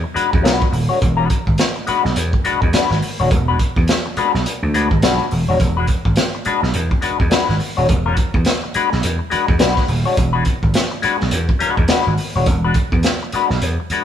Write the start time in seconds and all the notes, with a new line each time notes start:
0.04 muted clean electric guitar stroke
0.14 G#3 D4 F#4 B4, muted slap bass stroke, closed hi-hat
0.32 E2, muted clean electric guitar stroke, kick
0.42 B1 G#3 D4 F#4 B4, closed hi-hat
0.46 snare
0.62 kick
0.72 D#1, muted clean electric guitar stroke, open hi-hat
0.89 G#3 D4 F#4 C#5
1.00 E1, muted clean electric guitar stroke, kick, closed hi-hat
1.17 G#3 D4 F#4 B4
1.30 muted clean electric guitar stroke, kick, closed hi-hat
1.47 G#1, muted clean electric guitar stroke, kick
1.58 snare, closed hi-hat
1.76 muted clean electric guitar stroke
1.87 G#3 D4 F#4 B4, muted slap bass stroke, closed hi-hat
2.05 B1, muted clean electric guitar stroke, snare
2.16 E2, muted clean electric guitar stroke, closed hi-hat
2.33 muted clean electric guitar stroke, kick
2.44 G#3 D4 F#4 B4, muted slap bass stroke, closed hi-hat
2.62 E2, muted clean electric guitar stroke, kick
2.73 G#3 D4 F#4 B4, muted slap bass stroke, snare, closed hi-hat
2.90 G#1, snare
3.02 muted clean electric guitar stroke, open hi-hat
3.20 D#1 G#3 D4 F#4 C#5
3.31 E1, muted clean electric guitar stroke, kick, closed hi-hat
3.48 G#3 D4 F#4 B4
3.59 kick, closed hi-hat
3.76 E2, muted clean electric guitar stroke, kick
3.88 snare, closed hi-hat
4.06 muted clean electric guitar stroke
4.17 G#3 D4 F#4 B4, muted slap bass stroke, closed hi-hat
4.34 B1, muted clean electric guitar stroke, snare
4.46 muted clean electric guitar stroke, closed hi-hat
4.63 D2, muted clean electric guitar stroke
4.74 D2 G#3 D4 F#4 B4, closed hi-hat
4.91 G#1, muted clean electric guitar stroke, kick
5.02 B1 G#3 D4 F#4 B4, snare, closed hi-hat
5.31 E1, muted clean electric guitar stroke, open hi-hat
5.49 D#1 G#3 D4 F#4 C#5
5.60 E1, muted clean electric guitar stroke, kick, closed hi-hat
5.77 G#3 D4 F#4 B4
5.87 muted clean electric guitar stroke, kick, closed hi-hat
6.05 G#1, muted clean electric guitar stroke, kick
6.16 snare, closed hi-hat
6.35 muted clean electric guitar stroke
6.45 G#3 D4 F#4 B4, muted slap bass stroke, closed hi-hat
6.63 B1, muted clean electric guitar stroke, snare
6.74 E2, muted clean electric guitar stroke, closed hi-hat
6.91 muted clean electric guitar stroke, kick
7.01 G#3 D4 F#4 B4, muted slap bass stroke, closed hi-hat
7.20 E2, muted clean electric guitar stroke, kick
7.30 G#3 D4 F#4 B4, muted slap bass stroke, snare, closed hi-hat
7.49 G#1, snare
7.60 muted clean electric guitar stroke, open hi-hat
7.77 D#1 G#3 D4 F#4 C#5
7.88 E1, muted clean electric guitar stroke, kick, closed hi-hat
8.06 G#3 D4 F#4 B4
8.17 muted clean electric guitar stroke, kick, closed hi-hat
8.34 E2, muted clean electric guitar stroke, kick
8.45 snare, closed hi-hat
8.64 muted clean electric guitar stroke
8.74 G#3 D4 F#4 B4, muted slap bass stroke, closed hi-hat
8.92 B1, muted clean electric guitar stroke, snare
9.03 E2, muted clean electric guitar stroke, closed hi-hat
9.19 muted clean electric guitar stroke
9.30 G#3 D4 F#4 B4, muted slap bass stroke, closed hi-hat
9.48 E2, muted clean electric guitar stroke, kick
9.59 B1 G#3 D4 F#4 B4, snare, closed hi-hat
9.77 kick, snare
9.88 D#1, muted clean electric guitar stroke, open hi-hat
10.05 G#3 D4 F#4 C#5
10.17 E1, muted clean electric guitar stroke, kick, closed hi-hat
10.33 G#3 D4 F#4 B4
10.45 kick, closed hi-hat
10.63 G#1, muted clean electric guitar stroke, kick
10.74 snare, closed hi-hat
10.91 muted clean electric guitar stroke
11.02 G#3 D4 F#4 B4, muted slap bass stroke, closed hi-hat
11.19 B1, muted clean electric guitar stroke, snare
11.31 E2, muted clean electric guitar stroke, closed hi-hat
11.49 muted clean electric guitar stroke, kick
11.59 G#3 D4 F#4 B4, muted slap bass stroke, closed hi-hat
11.77 E2, muted clean electric guitar stroke, kick
11.88 G#3 D4 F#4 B4, muted slap bass stroke, snare, closed hi-hat
12.07 G#1
12.18 muted clean electric guitar stroke, open hi-hat
12.35 D#1 G#3 D4 F#4 C#5
12.46 E1, kick, closed hi-hat
12.64 G#3 D4 F#4 B4
12.74 muted clean electric guitar stroke, kick, closed hi-hat
12.92 E2, muted clean electric guitar stroke, kick
13.03 snare, closed hi-hat
13.23 muted clean electric guitar stroke
13.32 G#3 D4 F#4 B4, muted slap bass stroke, closed hi-hat
13.50 B1, muted clean electric guitar stroke, snare
13.62 E2, muted clean electric guitar stroke, closed hi-hat
13.80 muted clean electric guitar stroke
13.90 G#3 D4 F#4 B4, muted slap bass stroke, closed hi-hat